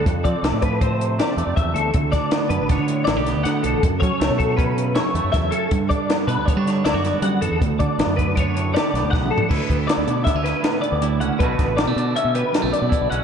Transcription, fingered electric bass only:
\new Staff \with { instrumentName = "Fingered electric bass" } { \clef bass \time 5/4 \key d \major \tempo 4 = 158 f,8 f16 r16 c,16 a,2 r16 e,16 f,16 e,8 d,8 | d,8 r4 fis,16 a,,8 d8. a,,16 b,,8 d,16 d8 b,,16 a,,16 | fis,8 fis16 r16 cis,16 b,2 r16 e,16 fis,16 e,8 r8 | g,8 r4 b,16 d,8 g8. d,16 fis,8 g,16 g8 fis,16 e,16 |
d,8 d16 r16 a,,16 fis,2 r16 b,,16 d,16 b,,8 r8 | d,16 r16 d,8 r16 d,16 b,8 r16 d,8 r4 d,8. cis,16 r16 | b,,8 a,,8. b,16 b,8 r16 b,8 r8 b,,16 r16 b,16 r16 b,,16 b,,16 r16 | }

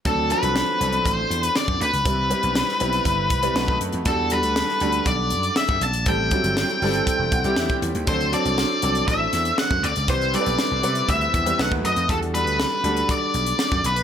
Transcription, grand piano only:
\new Staff \with { instrumentName = "Grand piano" } { \time 4/4 \key d \mixolydian \tempo 4 = 120 << { r1 | r1 | r1 | r4. a''8 g''8 fis''8 e''4 |
r1 | r1 | r1 | } \\ { <fis c' d' a'>8 <f fis c' d' a'>8. r16 <fis c' d' a'>4.~ <fis c' d' a'>16 r8. | <g c' e' b'>8 <g c' e' b'>8. r16 <g c' e' b'>4 r16 <g c' e' b'>16 <a dis' fis' b'>8. r16 | <g d' fis' a'>8 <g d' fis' a'>8. r16 <g d' fis' a'>4.~ <g d' fis' a'>16 r8. | <g c' e' a'>8 <fis g c' e'>8. r16 <g c' e' a'>4 r16 <g c' e' g'>4 r16 |
<fis c' d' a'>8 <fis c' d' a'>8. r16 <fis c' d' a'>4.~ <fis c' d' a'>16 r8. | <g c' e' b'>8 <g c' e' a' b'>8. r16 <g c' e' b'>4 r16 <g c' e' b'>16 <a dis' fis' b'>8. r16 | <g d' fis' a'>8 <g d' fis' a'>8. r16 <g d' fis' a'>4.~ <g d' fis' a'>16 r8. | } >> }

